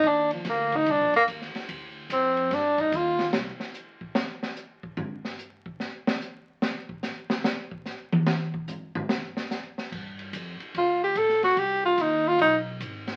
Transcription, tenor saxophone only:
X:1
M:4/4
L:1/16
Q:"Swing" 1/4=146
K:Gm
V:1 name="Tenor saxophone"
D2 F,2 B,2 E2 D2 B,2 z4 | z4 C4 D2 E2 F3 z | z16 | z16 |
z16 | z16 | z8 F2 G2 A2 ^F2 | G2 F2 E2 F2 E2 z6 |]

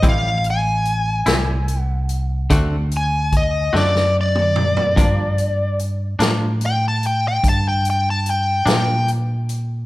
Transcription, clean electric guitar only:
X:1
M:12/8
L:1/8
Q:3/8=49
K:Gm
V:1 name="Clean electric guitar"
[A,,G,C=E] z2 [A,,G,CE] z2 [D,A,C^F] z2 [D,A,CF] z2 | [G,,F,B,D] z2 [G,,F,B,D] z4 z [G,,F,B,D] z2 |]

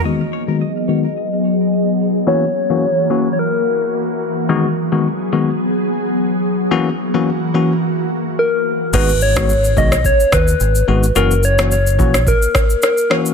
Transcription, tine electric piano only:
X:1
M:4/4
L:1/16
Q:"Swing 16ths" 1/4=108
K:G#m
V:1 name="Tine electric piano"
[D,G,B,F] z2 [D,G,B,F] z2 [D,G,B,F] z8 z | [E,A,CF] z2 [E,A,CF] z2 [E,A,CF] z8 z | [D,G,B,F] z2 [D,G,B,F] z2 [D,G,B,F] z8 z | [E,A,CF] z2 [E,A,CF] z2 [E,A,CF] z8 z |
[D,G,B,F] z2 [D,G,B,F] z2 [D,G,B,F] z6 z [D,G,B,F] z | [E,A,CF] z2 [E,A,CF] z2 [E,A,CF] z6 z [E,A,CF]2 |]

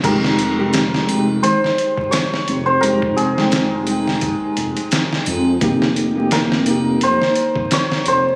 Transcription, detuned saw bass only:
X:1
M:4/4
L:1/8
Q:"Swing 16ths" 1/4=86
K:Fm
V:1 name="Detuned saw bass" clef=bass
F,,,4 A,,, z2 F,,, | F,,,4 z F,,, z F,, | F,,,4 F,,, z2 F,,, |]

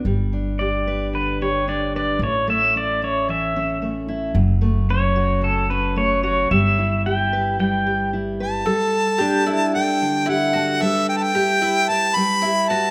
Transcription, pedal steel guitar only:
X:1
M:4/4
L:1/8
Q:1/4=112
K:Glyd
V:1 name="Pedal steel guitar"
z2 d2 B c d d | c e d c e2 z2 | z2 c2 A B c c | e2 g2 g2 z2 |
z8 | z8 |]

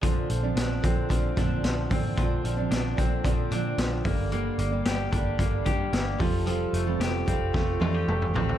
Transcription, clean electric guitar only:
X:1
M:4/4
L:1/16
Q:1/4=112
K:Bb
V:1 name="Clean electric guitar"
F,2 F,2 D2 C2 F,2 D2 F,2 C2 | F,2 F,2 D2 C2 F,2 D2 F,2 B,2 | B,2 B,2 G2 D2 B,2 G2 B,2 F,2 | F,2 A,2 G2 C2 A,2 F G A,2 C2 |]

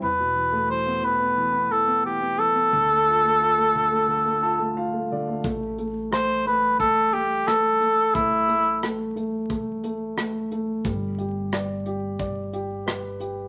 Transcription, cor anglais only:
X:1
M:4/4
L:1/8
Q:1/4=89
K:Ddor
V:1 name="Cor anglais"
B2 c B2 A G A- | A6 z2 | z2 c B A G A2 | E2 z6 |
z8 |]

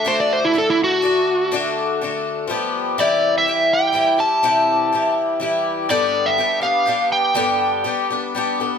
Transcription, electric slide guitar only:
X:1
M:3/4
L:1/16
Q:1/4=123
K:Dmix
V:1 name="Electric slide guitar"
c d c E A E F6 | z12 | [K:C] d3 e3 g4 a2- | a6 z6 |
d3 e3 f4 g2- | g6 z6 |]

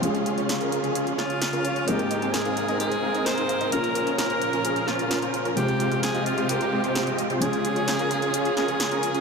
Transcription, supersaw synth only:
X:1
M:4/4
L:1/16
Q:1/4=130
K:Dblyd
V:1 name="Supersaw synth"
[DFA] z [DFA] [DFd]2 [DFB]2 [DFA] [DFA] z [DFd] z2 [DFB] [DFd]2 | [CEABe] z [CEABe] [CEABa]2 [CEABf]2 [CEABe] [CEABc] z [CEABf] [CEABe]2 [CEABf] z [CEABe] | [DFB] z [DFB] [DFd]2 [DFc]2 [DFB] [DFA] z [DFc] [DFB]2 [DFc] z [DFB] | [C,A,CFGc] z [C,A,CFGc] [C,A,CFGf]2 [C,A,CFGe]2 [C,A,CFGc] [C,A,CFGB] z [C,A,CFGe] [C,A,CFGc]2 [C,A,CFGe] z [C,A,CFGc] |
[DFA] z [DFA] [DFd]2 [DFB]2 [DFA] [DFA] z [DFB] [DFA]2 [DFB] z [DFA] |]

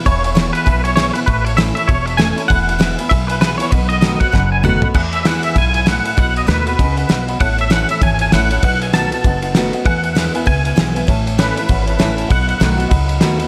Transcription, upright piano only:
X:1
M:4/4
L:1/8
Q:"Swing" 1/4=196
K:E
V:1 name="Upright piano"
[egb] [egb] b [egb] [egb] [egb] [egc'] [egb] | [eac'] [eac'] [ac'] [eac'] [eac'] [eac'] [ec'] [eac'] | [egb] [egb] [egb] [egb] [egb] [egb] [egb] [egb] | [dfb] [dfb] [dfb] [dfb] [dfb] [dfb] [dfb] [dfb] |
[egb] [gb] [gb] [egb] [egb] [egb] [egb] [egb] | [dfb] f d [dfb] [dfb] [dfb] [dfb] [dfb] | [cea] [cea] [ca] [cea] [cea] [cea] [cea] [cea] | [Bdf] [Bdf] [Bf] [Bdf] [Bdf] [Bdf] [Bdf] [Bdf] |
[Beg] [Beg] [Beg] [Beg] [Beg] [Beg] [Beg] [Beg] | [cea] [cea] [cea] [cea] [cef] [cea] [cea] [cea] | [dfb] [dfb] [dfb] [dfb] [dfb] [dfb] [dfb] [dfb] |]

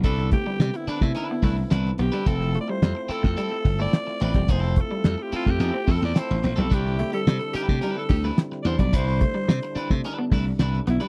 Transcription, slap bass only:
X:1
M:4/4
L:1/16
Q:1/4=108
K:C
V:1 name="Slap bass" clef=bass
C,,3 z C, z2 C, z2 C,,2 C,,2 B,,, z | F,,,3 z F,, z2 F,, z2 G,,,2 z2 A,,, E,,, | F,,,3 z F,, z2 F,, F,, z F,, E,, z A,,, _B,,, =B,,, | C,,3 z C, z2 C, z2 D,,2 z2 E,, B,,, |
C,,3 z C, z2 C, z2 C,,2 C,,2 B,,, z |]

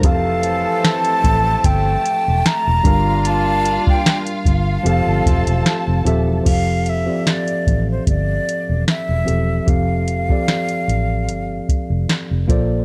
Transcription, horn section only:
X:1
M:4/4
L:1/8
Q:"Swing 16ths" 1/4=75
K:F
V:1 name="Horn section"
[E,CA]6 z [B,DF]- | [B,DF]3 z [A,CF]3 z | z8 | z8 |]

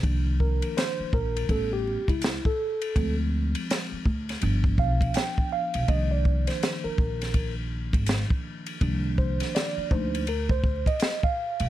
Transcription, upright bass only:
X:1
M:4/4
L:1/16
Q:"Swing 16ths" 1/4=82
K:Cm
V:1 name="Upright bass" clef=bass
C,,4 z2 B,,,2 =A,,,3 ^C,,2 z3 | D,,4 z2 D,,2 G,,,2 =B,,,2 z3 B,,, | C,,4 z2 B,,,4- B,,, A,,,2 z3 | C,,4 z2 D,,4- D,, z4 =B,,, |]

